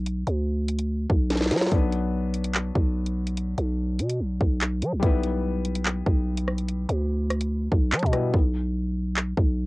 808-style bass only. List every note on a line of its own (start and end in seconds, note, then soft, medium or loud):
0.00 0.24 B1 loud
0.27 1.06 D2 loud
1.10 1.53 B1 loud
1.51 1.71 F#3 loud
1.72 2.71 B1 loud
2.75 3.55 B1 loud
3.58 4.01 B1 loud
3.99 4.21 B2 medium
4.20 4.40 B1 loud
4.41 4.83 B1 loud
4.82 4.94 F#3 loud
4.92 5.02 B1 loud
5.03 6.02 B1 loud
6.06 6.86 B1 loud
6.89 7.68 D2 loud
7.72 7.94 B1 loud
7.92 8.02 F#3 loud
8.03 8.33 B2 loud
8.34 9.33 B1 loud
9.37 9.66 B1 loud